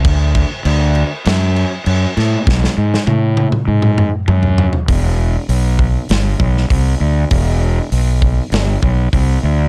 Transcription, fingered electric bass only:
\new Staff \with { instrumentName = "Fingered electric bass" } { \clef bass \time 4/4 \key b \phrygian \tempo 4 = 99 d,4 d,4 fis,4 fis,8 a,8 | b,,8 gis,8 a,4 gis,4 fis,4 | \key e \minor e,,4 b,,4 g,,8 b,,8 c,8 d,8 | e,,4 b,,4 g,,8 b,,8 c,8 d,8 | }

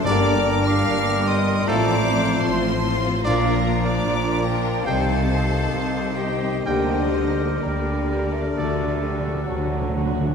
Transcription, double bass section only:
\new Staff \with { instrumentName = "Double bass section" } { \clef bass \time 4/4 \key g \minor \tempo 4 = 74 g,,4 g,,4 a,,4 a,,4 | bes,,4 bes,,4 c,4 c,4 | d,4 d,4 d,4 d,4 | }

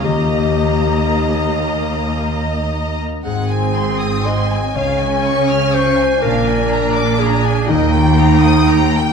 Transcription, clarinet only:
\new Staff \with { instrumentName = "Clarinet" } { \time 6/8 \key ees \mixolydian \tempo 4. = 40 g'4. r4. | aes'4 ees''8 des''4 c''8 | bes'4 aes'8 ees'4. | }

